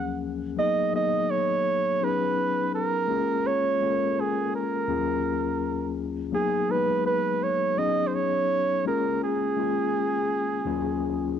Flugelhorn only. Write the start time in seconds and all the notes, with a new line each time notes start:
Already playing: F#5
0.59 D#5
0.96 D#5
1.31 C#5
2.04 B4
2.75 A#4
3.47 C#5
4.20 G#4
4.56 A#4
6.35 G#4
6.71 B4
7.07 B4
7.43 C#5
7.78 D#5
8.07 C5
8.15 C#5
8.87 A#4
9.24 G#4